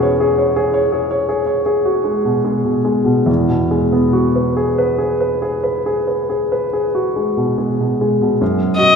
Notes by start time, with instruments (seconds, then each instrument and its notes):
Already playing: grand piano E2 B2 G#3 C#4 F#4 G#4 B4
0.02 grand piano C#5
0.20 grand piano G#4
0.38 grand piano C#5
0.56 grand piano G#4
0.74 grand piano C#5
0.92 grand piano G#4
1.11 grand piano C#5
1.29 grand piano G#4
1.47 grand piano C#5
1.66 grand piano G#4
1.85 grand piano F#4
2.04 grand piano G#3
2.25 grand piano B2
2.45 grand piano G#3
2.65 grand piano B2
2.85 grand piano G#3
3.05 grand piano B2
3.26 grand piano E2
3.49 grand piano B2
3.71 grand piano G#3
3.92 grand piano B3
4.13 grand piano F#4
4.35 grand piano B4
4.57 grand piano G#4
4.78 grand piano B4
4.98 grand piano G#4
5.20 grand piano B4
5.42 grand piano G#4
5.63 grand piano B4
5.86 grand piano G#4
6.07 grand piano B4
6.30 grand piano G#4
6.52 grand piano B4
6.73 grand piano G#4
6.95 grand piano F#4
7.16 grand piano G#3
7.37 grand piano B2
7.58 grand piano G#3
7.80 grand piano B2
8.01 grand piano G#3
8.21 grand piano B2
8.41 grand piano F#2
8.77 grand piano F#4, violin D#5